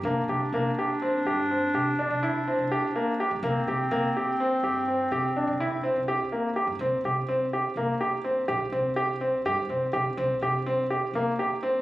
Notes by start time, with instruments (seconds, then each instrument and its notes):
0.03 upright bass C2, grand piano A#3, clarinet D4
0.28 upright bass C2, grand piano G4
0.53 upright bass C3, grand piano A#3
0.79 grand piano G4
1.02 grand piano C4
1.25 upright bass G2, grand piano G4
1.51 grand piano C4
1.74 upright bass C3, grand piano G4
1.99 grand piano D4
2.10 upright bass C3
2.23 grand piano E4
2.48 grand piano C4
2.58 upright bass C2
2.72 grand piano G4
2.96 grand piano A#3
3.20 grand piano G4
3.31 upright bass G2
3.43 upright bass C2, grand piano A#3, clarinet C4
3.67 upright bass C2, grand piano G4
3.91 upright bass C3, grand piano A#3
4.17 grand piano G4
4.40 grand piano C4
4.63 upright bass G2, grand piano G4
4.88 grand piano C4
5.11 upright bass C3, grand piano G4
5.36 grand piano D4
5.47 upright bass C3
5.60 grand piano E4
5.83 grand piano C4
5.96 upright bass C2
6.08 grand piano G4
6.32 grand piano A#3
6.56 grand piano G4
6.67 upright bass G2
6.79 upright bass C2, grand piano C4
7.04 upright bass C3, grand piano G4
7.29 grand piano C4
7.53 grand piano G4
7.76 upright bass C2, grand piano A#3
8.01 grand piano G4
8.24 grand piano C4
8.48 upright bass A#1, grand piano G4
8.72 upright bass C2, grand piano C4
8.96 grand piano G4
9.21 grand piano C4
9.45 upright bass G2, grand piano G4
9.69 upright bass C2, grand piano C4
9.93 upright bass C3, grand piano G4
10.17 upright bass C2, grand piano C4
10.41 upright bass C3, grand piano G4
10.66 grand piano C4
10.90 grand piano G4
11.13 upright bass C2, grand piano A#3
11.39 grand piano G4
11.63 grand piano C4